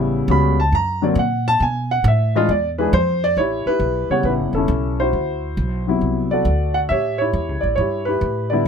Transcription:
Already playing: upright bass A1, grand piano C#3 G3 B3 E4
0.28 upright bass C#2, grand piano C#3 G3 B3 F#4 B5
0.60 grand piano A5
0.72 upright bass F#2, grand piano A#5
1.02 grand piano D3 F#3 A#3 C4 D5
1.15 upright bass A#2, grand piano F#5
1.48 grand piano A5
1.60 upright bass B2, grand piano G#5
1.91 grand piano F#5
2.04 upright bass A2, grand piano E5
2.35 grand piano E3 G#3 D4 F4 D#5
2.49 upright bass E2, grand piano D5
2.78 grand piano E3 G#3 D4 G#4 B4
2.93 upright bass F2, grand piano C5
3.24 grand piano D5
3.37 upright bass A1, grand piano E4 G4 C#5
3.66 grand piano E4 G4 B4, muted upright bass stroke
3.79 upright bass B1
4.10 grand piano C#3 G3 B3 C#5 F#5, muted upright bass stroke
4.23 upright bass A1, grand piano G4 B4
4.27 grand piano E4
4.38 upright bass G1
4.53 upright bass E1, grand piano C#4 E4 A4
4.68 upright bass B1
5.00 grand piano E4 F#4 C5
5.13 upright bass D2
5.57 upright bass B1
5.87 grand piano C3 F#3 B3 E4
6.01 upright bass C2
6.31 grand piano F#4 A4 D5
6.45 upright bass D2
6.74 grand piano F#5
6.89 upright bass A2, grand piano G4 C#5 E5
7.18 grand piano E4 G4 C#5
7.33 upright bass E2
7.48 upright bass C#2
7.61 upright bass A1, grand piano D5
7.76 upright bass G2, grand piano E4 G4 C#5
8.05 grand piano E4 G4 B4
8.21 upright bass A2
8.50 grand piano D3 G3 B3 E4 G4 B4 D5

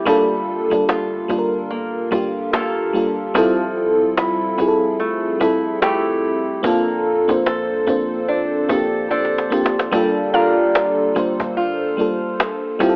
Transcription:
Already playing: steel-string acoustic guitar A3 E4 G4
0.05 808-style bass G1, fm electric piano G3 A#3 D4 F4 A4, steel-string acoustic guitar G3, cajon bass
0.70 808-style bass G1, fm electric piano G3 A#3 D4 F4 A4, cajon bass
0.89 steel-string acoustic guitar F4, cajon slap
1.28 808-style bass G1, fm electric piano G3 A#3 D4 F4 A4, cajon bass
1.39 fm electric piano A#4
1.71 steel-string acoustic guitar A#3, cajon slap
2.11 808-style bass G1, fm electric piano G3 A#3 D4 F4 G4, steel-string acoustic guitar F4, cajon bass
2.53 steel-string acoustic guitar A#3 F4 A4, cajon slap
2.93 fm electric piano G3 A#3 D4 F4 A4
3.34 808-style bass F1, steel-string acoustic guitar F3, fm electric piano G3 C4 E4 F4 A4, cajon bass
4.01 808-style bass C2
4.17 steel-string acoustic guitar E4, cajon slap
4.58 808-style bass F1, fm electric piano G3 C4 E4 F4 G#4, cajon bass
4.68 fm electric piano A4
4.99 steel-string acoustic guitar A3, cajon slap
5.40 808-style bass F1, fm electric piano G3 C4 E4 F4 A4, steel-string acoustic guitar E4, cajon bass
5.82 steel-string acoustic guitar A3 E4 G4, cajon slap
6.63 808-style bass A#1, fm electric piano A#3 C4 D4 F4 A4, steel-string acoustic guitar A#3, cajon bass
7.28 808-style bass A#1, fm electric piano A#3 C4 D4 F4 C5, cajon bass
7.46 steel-string acoustic guitar A4, cajon slap
7.70 808-style bass C2
7.87 808-style bass A#1, fm electric piano A#3 C4 D4 F4 C5, cajon bass
8.28 steel-string acoustic guitar D4, cajon slap
8.69 808-style bass A#1, fm electric piano A#3 C4 D4 F4 G4, steel-string acoustic guitar A4, cajon bass
9.11 steel-string acoustic guitar D4 A4 C5, cajon slap
9.25 cajon slap
9.38 cajon slap
9.50 fm electric piano A#3 C4 D4 F4 G4, cajon slap
9.66 cajon slap
9.79 cajon slap
9.91 808-style bass G1, fm electric piano G3 A#3 D4 F4 A4, steel-string acoustic guitar G3, cajon bass
10.33 steel-string acoustic guitar D4 F4 A#4, synth pluck F5
10.75 cajon slap
11.15 808-style bass G1, fm electric piano G3 A#3 D4 F4 C5, cajon bass
11.40 808-style bass G1, cajon bass
11.57 steel-string acoustic guitar F4
11.97 808-style bass A1, fm electric piano G3 A#3 D4 F4 A4
12.40 cajon slap
12.79 808-style bass F1, steel-string acoustic guitar F3, fm electric piano G3 C4 E4 F4 G4, cajon bass
12.89 fm electric piano A4

